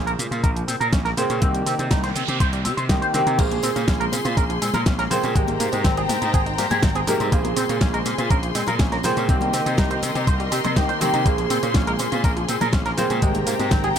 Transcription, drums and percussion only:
0.07 closed hi-hat, shaker
0.19 open hi-hat, shaker
0.32 closed hi-hat, shaker
0.44 kick, closed hi-hat, shaker
0.57 closed hi-hat, shaker
0.68 open hi-hat, shaker
0.81 closed hi-hat, shaker
0.93 kick, snare, closed hi-hat, shaker
1.05 snare, closed hi-hat, shaker
1.17 open hi-hat, shaker
1.30 closed hi-hat, shaker
1.42 kick, closed hi-hat, shaker
1.55 closed hi-hat, shaker
1.66 open hi-hat, shaker
1.79 closed hi-hat, shaker
1.91 kick, snare, closed hi-hat, shaker
2.03 snare, closed hi-hat, shaker
2.16 open hi-hat, shaker
2.28 closed hi-hat, shaker
2.40 kick, closed hi-hat, shaker
2.53 closed hi-hat, shaker
2.65 open hi-hat, shaker
2.78 closed hi-hat, shaker
2.89 kick, snare, closed hi-hat, shaker
3.02 closed hi-hat, shaker
3.14 open hi-hat, shaker
3.27 closed hi-hat, shaker
3.39 kick, closed hi-hat, crash, tambourine, shaker
3.52 closed hi-hat, high conga, shaker
3.63 open hi-hat, tambourine, shaker
3.76 closed hi-hat, tambourine, shaker
3.88 kick, snare, closed hi-hat, tambourine, shaker
4.01 closed hi-hat, shaker
4.12 open hi-hat, tambourine, high conga, shaker
4.24 closed hi-hat, tambourine, shaker
4.37 kick, closed hi-hat, tambourine, shaker
4.50 closed hi-hat, shaker
4.62 open hi-hat, tambourine, shaker
4.74 closed hi-hat, tambourine, high bongo, high conga, low conga, shaker
4.86 kick, snare, closed hi-hat, shaker
4.99 snare, closed hi-hat, shaker
5.11 open hi-hat, tambourine, low conga, shaker
5.23 closed hi-hat, tambourine, shaker
5.35 kick, closed hi-hat, tambourine, shaker
5.48 closed hi-hat, high conga, shaker
5.60 open hi-hat, tambourine, shaker
5.72 closed hi-hat, tambourine, shaker
5.84 kick, snare, closed hi-hat, tambourine, shaker
5.97 closed hi-hat, high bongo, shaker
6.09 open hi-hat, tambourine, high conga, shaker
6.22 closed hi-hat, tambourine, shaker
6.34 kick, closed hi-hat, tambourine, shaker
6.46 closed hi-hat, shaker
6.58 open hi-hat, tambourine, shaker
6.70 closed hi-hat, tambourine, high conga, low conga, shaker
6.83 kick, snare, closed hi-hat, tambourine, shaker
6.95 closed hi-hat, high bongo, shaker
7.07 open hi-hat, tambourine, low conga, shaker
7.20 closed hi-hat, tambourine, shaker
7.32 kick, closed hi-hat, tambourine, shaker
7.45 closed hi-hat, high conga, shaker
7.57 open hi-hat, tambourine, shaker
7.69 closed hi-hat, tambourine, shaker
7.81 kick, snare, closed hi-hat, tambourine, shaker
7.94 closed hi-hat, shaker
8.05 open hi-hat, tambourine, high conga, shaker
8.18 closed hi-hat, tambourine, shaker
8.30 kick, closed hi-hat, tambourine, shaker
8.43 closed hi-hat, shaker
8.55 open hi-hat, tambourine, shaker
8.67 closed hi-hat, tambourine, high bongo, high conga, low conga, shaker
8.79 kick, snare, closed hi-hat, tambourine, shaker
8.92 snare, closed hi-hat, shaker
9.03 open hi-hat, tambourine, low conga, shaker
9.16 closed hi-hat, tambourine, shaker
9.28 kick, closed hi-hat, tambourine, shaker
9.41 closed hi-hat, high conga, shaker
9.53 open hi-hat, tambourine, shaker
9.66 closed hi-hat, tambourine, shaker
9.77 kick, snare, closed hi-hat, tambourine, shaker
9.90 closed hi-hat, high bongo, shaker
10.02 open hi-hat, tambourine, high conga, shaker
10.15 closed hi-hat, tambourine, shaker
10.27 kick, closed hi-hat, tambourine, shaker
10.40 closed hi-hat, shaker
10.52 open hi-hat, tambourine, shaker
10.64 closed hi-hat, tambourine, high conga, low conga, shaker
10.76 kick, snare, closed hi-hat, tambourine, shaker
10.89 closed hi-hat, high bongo, shaker
11.01 open hi-hat, tambourine, low conga, shaker
11.14 closed hi-hat, tambourine, shaker
11.25 kick, closed hi-hat, tambourine, shaker
11.38 closed hi-hat, high conga, shaker
11.50 open hi-hat, tambourine, shaker
11.63 closed hi-hat, tambourine, shaker
11.74 kick, snare, closed hi-hat, tambourine, shaker
11.87 closed hi-hat, shaker
11.99 open hi-hat, tambourine, high conga, shaker
12.12 closed hi-hat, tambourine, shaker
12.24 kick, closed hi-hat, tambourine, shaker
12.37 closed hi-hat, shaker
12.49 open hi-hat, tambourine, shaker
12.61 closed hi-hat, tambourine, high bongo, high conga, low conga, shaker
12.73 kick, snare, closed hi-hat, tambourine, shaker
12.85 snare, closed hi-hat, shaker
12.98 open hi-hat, tambourine, low conga, shaker
13.10 closed hi-hat, tambourine, shaker
13.22 kick, closed hi-hat, tambourine, shaker
13.34 closed hi-hat, high conga, shaker
13.47 open hi-hat, tambourine, shaker
13.60 closed hi-hat, tambourine, shaker
13.71 kick, snare, closed hi-hat, tambourine, shaker
13.84 closed hi-hat, high bongo, shaker
13.96 tambourine

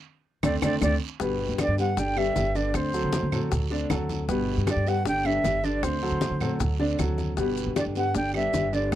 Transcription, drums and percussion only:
0.43 low bongo, high conga, long guiro, claves, maracas
0.62 low bongo, high conga, long guiro, claves, maracas
0.81 low bongo, high conga, long guiro, claves, maracas
1.20 high bongo, high conga, long guiro, maracas
1.40 high conga
1.58 high bongo, high conga, short guiro, claves, maracas
1.78 high bongo, high conga, short guiro, maracas
1.97 high bongo, high conga, long guiro, maracas
2.16 high bongo, high conga, claves
2.36 high bongo, low bongo, high conga, short guiro, maracas
2.55 high bongo, high conga, short guiro, maracas
2.74 high bongo, high conga, long guiro, claves, maracas
2.94 high conga, maracas
3.13 high bongo, high conga, short guiro, maracas
3.32 high bongo, high conga, low conga, short guiro, claves, maracas
3.51 high bongo, high conga, low conga, long guiro, maracas
3.71 high bongo, high conga
3.90 high bongo, low bongo, high conga, short guiro, claves, maracas
4.09 high bongo, high conga, short guiro, maracas
4.29 high bongo, high conga, long guiro, maracas
4.48 high conga
4.67 high bongo, high conga, short guiro, claves, maracas
4.87 high bongo, high conga, short guiro, maracas
5.06 high bongo, high conga, long guiro, maracas
5.25 high bongo, high conga, claves
5.44 high bongo, low bongo, high conga, short guiro, maracas
5.64 high bongo, high conga, short guiro, maracas
5.83 high bongo, high conga, long guiro, claves, maracas
6.02 high conga
6.21 high bongo, high conga, short guiro, maracas
6.40 high bongo, high conga, low conga, short guiro, claves, maracas
6.60 high bongo, high conga, low conga, long guiro, maracas
6.79 high bongo, high conga
6.99 high bongo, low bongo, high conga, short guiro, claves, maracas
7.18 high bongo, high conga, short guiro, maracas
7.37 high bongo, high conga, long guiro, maracas
7.57 high conga, maracas
7.76 high bongo, high conga, short guiro, claves, maracas
7.95 high bongo, high conga, short guiro, maracas
8.14 high bongo, high conga, long guiro, maracas
8.34 high bongo, high conga, claves
8.54 high bongo, low bongo, high conga, short guiro, maracas
8.73 high bongo, high conga, short guiro, maracas
8.92 high bongo, long guiro

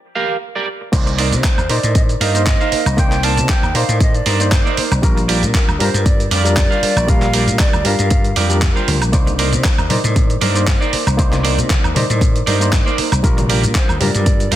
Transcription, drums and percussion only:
0.93 kick, closed hi-hat, crash, shaker
1.07 closed hi-hat, shaker
1.19 open hi-hat
1.32 closed hi-hat, shaker
1.44 kick, clap, closed hi-hat, shaker
1.58 high woodblock, shaker
1.70 open hi-hat
1.83 closed hi-hat, shaker
1.95 kick, closed hi-hat, shaker
2.09 closed hi-hat, shaker
2.21 open hi-hat
2.35 closed hi-hat, shaker
2.47 kick, clap, closed hi-hat, shaker
2.61 shaker
2.72 open hi-hat
2.86 closed hi-hat, high woodblock, shaker
2.98 kick, closed hi-hat, shaker
3.12 clap, closed hi-hat, shaker
3.23 open hi-hat
3.37 closed hi-hat, shaker
3.49 kick, clap, closed hi-hat, shaker
3.63 high woodblock, shaker
3.75 open hi-hat
3.89 closed hi-hat, shaker
4.00 kick, closed hi-hat, shaker
4.14 closed hi-hat, shaker
4.26 open hi-hat
4.40 closed hi-hat, shaker
4.52 kick, clap, closed hi-hat, shaker
4.67 shaker
4.77 open hi-hat
4.92 closed hi-hat, high woodblock, shaker
5.03 kick, closed hi-hat, shaker
5.17 closed hi-hat, shaker
5.29 open hi-hat
5.43 closed hi-hat, shaker
5.54 kick, clap, closed hi-hat, shaker
5.69 high woodblock, shaker
5.80 open hi-hat
5.94 closed hi-hat, shaker
6.06 kick, closed hi-hat, shaker
6.20 closed hi-hat, shaker
6.31 open hi-hat
6.45 closed hi-hat, shaker
6.57 kick, clap, closed hi-hat, shaker
6.72 shaker
6.83 open hi-hat
6.97 closed hi-hat, high woodblock, shaker
7.08 kick, closed hi-hat, shaker
7.22 clap, closed hi-hat, shaker
7.34 open hi-hat
7.48 closed hi-hat, shaker
7.59 kick, clap, closed hi-hat, shaker
7.73 high woodblock, shaker
7.85 open hi-hat
7.99 closed hi-hat, shaker
8.10 kick, closed hi-hat, shaker
8.24 closed hi-hat, shaker
8.36 open hi-hat
8.50 closed hi-hat, shaker
8.62 kick, clap, closed hi-hat, shaker
8.77 shaker
8.88 open hi-hat
9.02 closed hi-hat, high woodblock, shaker
9.13 kick, closed hi-hat, shaker
9.27 closed hi-hat, low conga, shaker
9.39 open hi-hat
9.53 closed hi-hat, shaker
9.64 kick, clap, closed hi-hat, shaker
9.78 high woodblock, shaker
9.90 open hi-hat, high conga, low conga
10.04 closed hi-hat, shaker
10.16 kick, closed hi-hat, shaker
10.30 closed hi-hat, shaker
10.41 open hi-hat, high conga
10.56 closed hi-hat, shaker
10.67 kick, clap, closed hi-hat, shaker
10.82 shaker
10.93 open hi-hat
11.07 closed hi-hat, high woodblock, shaker
11.19 kick, closed hi-hat, shaker
11.33 clap, closed hi-hat, low conga, shaker
11.45 open hi-hat
11.58 closed hi-hat, low conga, shaker
11.70 kick, clap, closed hi-hat, shaker
11.84 high woodblock, shaker
11.96 open hi-hat, high conga, low conga
12.10 closed hi-hat, shaker
12.21 kick, closed hi-hat, shaker
12.36 closed hi-hat, shaker
12.46 open hi-hat, high conga
12.61 closed hi-hat, shaker
12.73 kick, clap, closed hi-hat, shaker
12.87 shaker
12.98 open hi-hat
13.12 closed hi-hat, high woodblock, shaker
13.24 kick, closed hi-hat, shaker
13.38 closed hi-hat, low conga, shaker
13.50 open hi-hat
13.63 closed hi-hat, shaker
13.75 kick, clap, closed hi-hat, shaker
13.89 high woodblock, shaker
14.01 open hi-hat, high conga, low conga
14.15 closed hi-hat, shaker
14.26 kick, closed hi-hat, shaker
14.40 closed hi-hat, shaker
14.52 open hi-hat, high conga

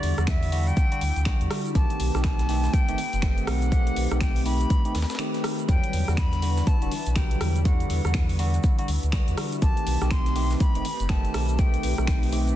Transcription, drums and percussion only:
0.03 closed hi-hat, open hi-hat
0.18 cross-stick, closed hi-hat, shaker
0.27 finger snap, kick, snare, closed hi-hat, open hi-hat, shaker
0.43 open hi-hat, shaker
0.52 closed hi-hat, open hi-hat
0.67 closed hi-hat, shaker
0.77 kick, closed hi-hat, shaker
0.92 closed hi-hat, shaker
1.01 closed hi-hat, open hi-hat
1.16 closed hi-hat, shaker
1.25 finger snap, kick, snare, closed hi-hat, shaker
1.41 closed hi-hat, shaker
1.51 cross-stick, closed hi-hat, open hi-hat
1.66 closed hi-hat, shaker
1.75 kick, closed hi-hat, shaker
1.90 closed hi-hat, shaker
2.00 closed hi-hat, open hi-hat
2.15 cross-stick, snare, closed hi-hat, shaker
2.24 finger snap, kick, snare, closed hi-hat, shaker
2.39 snare, closed hi-hat, shaker
2.49 snare, closed hi-hat, open hi-hat
2.64 snare, shaker
2.73 kick, closed hi-hat, shaker
2.88 closed hi-hat, shaker
2.98 closed hi-hat, open hi-hat
3.13 closed hi-hat, shaker
3.22 finger snap, kick, snare, closed hi-hat, shaker
3.37 closed hi-hat, shaker
3.47 cross-stick, closed hi-hat, open hi-hat
3.62 closed hi-hat, shaker
3.72 kick, closed hi-hat, shaker
3.87 closed hi-hat, shaker
3.96 closed hi-hat, open hi-hat
4.11 cross-stick, closed hi-hat, shaker
4.21 finger snap, kick, snare, closed hi-hat, open hi-hat, shaker
4.36 open hi-hat, shaker
4.46 closed hi-hat, open hi-hat
4.60 closed hi-hat, shaker
4.70 kick, closed hi-hat, shaker
4.85 closed hi-hat, shaker
4.95 snare, closed hi-hat, open hi-hat
5.02 snare, closed hi-hat
5.09 snare, closed hi-hat, shaker
5.15 finger snap, snare, closed hi-hat
5.19 closed hi-hat, shaker
5.34 snare, closed hi-hat, shaker
5.44 cross-stick, closed hi-hat, open hi-hat
5.59 closed hi-hat, shaker
5.69 kick, closed hi-hat, shaker
5.83 closed hi-hat, shaker
5.93 closed hi-hat, open hi-hat
6.08 cross-stick, snare, shaker
6.17 finger snap, kick, snare, closed hi-hat
6.32 snare, closed hi-hat, shaker
6.42 snare, closed hi-hat, open hi-hat
6.57 snare, shaker
6.67 kick, closed hi-hat, shaker
6.82 closed hi-hat, shaker
6.91 closed hi-hat, open hi-hat
7.06 closed hi-hat, shaker
7.16 finger snap, kick, snare, closed hi-hat, shaker
7.31 closed hi-hat, shaker
7.41 cross-stick, closed hi-hat, open hi-hat
7.56 closed hi-hat, shaker
7.65 kick, closed hi-hat, shaker
7.80 closed hi-hat, shaker
7.90 closed hi-hat, open hi-hat
8.05 cross-stick, closed hi-hat, shaker
8.14 finger snap, kick, snare, closed hi-hat, open hi-hat
8.29 open hi-hat, shaker
8.39 closed hi-hat, open hi-hat
8.54 closed hi-hat, shaker
8.63 kick, closed hi-hat, shaker
8.79 closed hi-hat, shaker
8.88 closed hi-hat, open hi-hat
9.03 closed hi-hat, shaker
9.12 finger snap, kick, snare, closed hi-hat, shaker
9.28 closed hi-hat, shaker
9.37 cross-stick, closed hi-hat, open hi-hat
9.52 closed hi-hat, shaker
9.62 kick, closed hi-hat, shaker
9.77 closed hi-hat, shaker
9.87 closed hi-hat, open hi-hat
10.01 cross-stick, snare, closed hi-hat, shaker
10.11 finger snap, kick, snare, closed hi-hat, shaker
10.26 snare, closed hi-hat, shaker
10.36 snare, closed hi-hat, open hi-hat
10.50 snare, shaker
10.60 kick, closed hi-hat, shaker
10.75 closed hi-hat, shaker
10.85 closed hi-hat, open hi-hat
11.00 closed hi-hat, shaker
11.09 finger snap, kick, snare, closed hi-hat, shaker
11.25 closed hi-hat, shaker
11.34 cross-stick, closed hi-hat, open hi-hat
11.49 shaker
11.58 kick, closed hi-hat, shaker
11.73 closed hi-hat, shaker
11.83 closed hi-hat, open hi-hat
11.98 cross-stick, shaker
12.07 finger snap, kick, snare, closed hi-hat, open hi-hat, shaker
12.23 open hi-hat, shaker
12.32 closed hi-hat, open hi-hat
12.48 closed hi-hat, shaker

